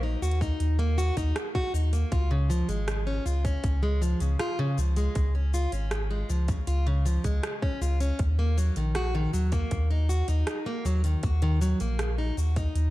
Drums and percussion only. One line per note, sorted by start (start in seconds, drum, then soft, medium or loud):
0.23 shaker medium
0.31 closed hi-hat soft
0.41 kick loud
0.41 shaker soft
0.60 closed hi-hat medium
0.60 shaker soft
0.79 closed hi-hat soft
0.99 shaker medium
1.17 kick medium
1.17 closed hi-hat soft
1.17 shaker soft
1.36 cross-stick loud
1.36 closed hi-hat medium
1.36 shaker soft
1.55 kick loud
1.75 shaker medium
1.93 closed hi-hat soft
1.93 shaker soft
2.12 kick loud
2.12 closed hi-hat soft
2.12 shaker soft
2.51 shaker medium
2.69 closed hi-hat soft
2.69 shaker soft
2.88 cross-stick loud
2.88 closed hi-hat medium
2.88 shaker soft
3.27 shaker medium
3.45 kick loud
3.45 closed hi-hat soft
3.45 shaker soft
3.64 kick loud
3.64 closed hi-hat medium
3.64 shaker soft
4.02 shaker medium
4.20 closed hi-hat soft
4.20 shaker soft
4.39 cross-stick loud
4.39 closed hi-hat medium
4.39 shaker soft
4.78 shaker medium
4.96 closed hi-hat soft
4.96 shaker soft
5.15 kick loud
5.15 closed hi-hat medium
5.15 shaker soft
5.54 shaker medium
5.72 closed hi-hat soft
5.72 shaker soft
5.91 cross-stick loud
5.91 closed hi-hat medium
5.91 shaker soft
6.30 shaker medium
6.48 kick loud
6.48 closed hi-hat soft
6.48 shaker soft
6.67 closed hi-hat medium
6.67 shaker soft
7.06 shaker medium
7.24 kick medium
7.24 closed hi-hat soft
7.24 shaker soft
7.43 cross-stick loud
7.43 closed hi-hat medium
7.43 shaker soft
7.62 kick loud
7.82 shaker medium
8.00 closed hi-hat soft
8.00 shaker soft
8.19 kick loud
8.19 closed hi-hat medium
8.19 shaker soft
8.58 shaker medium
8.76 closed hi-hat soft
8.76 shaker soft
8.95 cross-stick loud
8.95 closed hi-hat medium
8.95 shaker soft
9.34 shaker medium
9.52 kick medium
9.52 closed hi-hat soft
9.52 shaker soft
9.71 kick loud
9.71 closed hi-hat medium
9.71 shaker soft
10.10 shaker medium
10.28 closed hi-hat soft
10.28 shaker soft
10.47 cross-stick loud
10.47 closed hi-hat medium
10.47 shaker soft
10.86 shaker medium
11.04 closed hi-hat soft
11.04 shaker soft
11.23 kick loud
11.23 closed hi-hat medium
11.23 shaker soft
11.42 closed hi-hat soft
11.62 shaker medium
11.80 closed hi-hat soft
11.80 shaker soft
11.99 cross-stick loud
11.99 closed hi-hat medium
11.99 shaker soft
12.38 shaker medium
12.56 kick medium
12.56 closed hi-hat soft
12.56 shaker soft
12.75 closed hi-hat medium
12.75 shaker soft